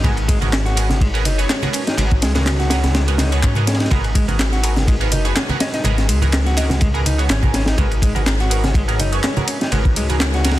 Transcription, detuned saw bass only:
0.04 1.27 G#1 loud
1.25 1.45 F#1 medium
1.98 2.23 G#1 loud
2.22 3.43 C#2 medium
3.43 3.88 G#2 loud
3.91 5.14 G#1 loud
5.12 5.32 F#1 medium
5.85 6.11 G#1 loud
6.09 7.29 C#2 medium
7.29 7.74 G#1 loud
7.78 9.01 G#1 loud
8.99 9.19 F#1 medium
9.72 9.98 G#1 loud
9.96 10.59 C#2 medium

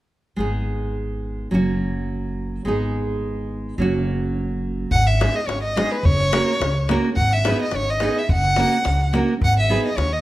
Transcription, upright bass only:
0.38 1.49 G#1 medium
1.52 2.63 F#1 medium
2.65 3.76 G#1 medium
3.78 4.89 F#1 medium
4.91 5.25 G#1 medium
5.47 5.81 G#1 medium
6.03 6.37 F#1 medium
6.60 6.94 C#2 medium
7.17 7.51 G#1 medium
7.72 8.06 G#1 medium
8.29 8.63 F#1 medium
8.85 9.19 C#2 medium
9.41 9.75 G#1 loud
9.97 10.21 D#2 medium

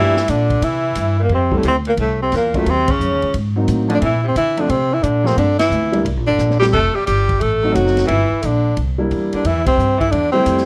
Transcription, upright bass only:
0.00 0.27 G2 medium
0.28 0.61 A#2 medium
0.61 0.95 C3 medium
0.96 1.29 G2 medium
1.29 1.62 F2 medium
1.64 1.97 D2 medium
1.97 2.30 C2 medium
2.32 2.65 E2 medium
2.66 2.99 D#2 medium
2.99 3.11 F#2 medium
3.11 3.22 D#2 medium
3.23 3.33 C#2 medium
3.34 3.67 G#2 medium
3.68 4.01 A2 medium
4.02 4.35 A#2 medium
4.36 4.69 D3 medium
4.69 5.02 C3 medium
5.03 5.36 A#2 medium
5.37 5.70 G2 medium
5.70 6.04 D2 medium
6.05 6.17 C2 medium
6.17 6.27 A#1 medium
6.28 6.38 G1 medium
6.38 6.72 A#1 medium
6.74 6.94 F1 medium
6.95 muted upright bass stroke soft
7.08 7.40 G1 medium
7.42 7.74 A1 medium
7.75 8.08 F#1 medium
8.09 8.29 G1 medium
8.32 muted upright bass stroke soft
8.43 8.76 A#1 medium
8.77 9.10 C2 medium
9.11 9.31 E2 medium
9.33 muted upright bass stroke soft
9.44 9.55 F2 medium
9.55 9.66 E2 medium
9.67 9.77 C2 medium
9.78 10.11 G2 medium
10.12 10.45 E2 medium
10.46 10.65 F2 medium

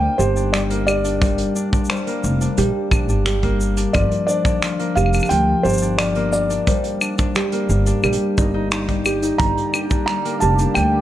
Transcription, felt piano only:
0.00 0.20 G5 loud
0.18 0.54 C5 medium
0.53 0.60 D5 medium
0.87 3.56 D5 loud
3.93 4.25 D5 medium
4.27 4.92 D5 loud
4.95 5.28 F5 loud
5.29 5.65 G5 loud
5.63 5.99 C5 medium
5.98 6.30 D5 medium
6.33 9.01 D5 medium
9.38 10.04 A#5 loud
10.06 10.42 A#5 loud
10.40 10.76 A5 loud
10.74 11.01 G5 loud

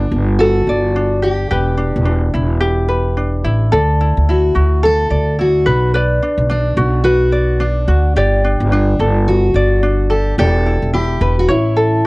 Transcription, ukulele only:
0.00 0.96 D4 medium
0.00 0.39 A4 medium
0.00 0.69 D5 medium
0.41 1.51 A4 medium
0.69 2.37 D5 medium
0.96 1.77 D4 medium
1.22 1.50 G4 medium
1.51 2.59 G4 medium
1.51 2.33 B4 medium
1.77 2.05 D4 medium
2.05 3.16 D4 medium
2.34 3.44 E4 medium
2.60 3.72 G4 medium
2.88 3.71 B4 medium
3.17 4.04 D4 medium
3.44 3.79 E4 medium
3.72 4.82 A4 medium
3.72 5.11 D5 medium
4.01 4.28 E4 medium
4.29 5.38 E4 medium
4.55 6.22 F#4 medium
4.83 5.10 A4 medium
5.11 5.95 D5 medium
5.39 5.73 E4 medium
5.66 5.93 B4 medium
5.94 7.03 B4 medium
5.94 7.32 D5 medium
6.23 6.49 D4 medium
6.50 6.77 D4 medium
6.77 7.60 F#4 medium
7.05 7.88 B4 medium
7.32 8.17 D5 medium
7.60 8.44 D4 medium
7.88 8.16 F#4 medium
8.16 10.13 G4 medium
8.16 9.55 D5 medium
8.44 8.71 D4 medium
8.72 9.82 D4 medium
9.00 10.09 A4 medium
9.56 10.38 D5 medium
9.83 10.45 D4 medium
10.10 10.38 A4 medium
10.39 11.48 G4 medium
10.39 11.21 D5 medium
10.66 10.93 E4 medium
10.93 12.04 E4 medium
11.21 11.55 B4 medium
11.49 12.07 C#5 medium
11.77 12.07 A4 medium

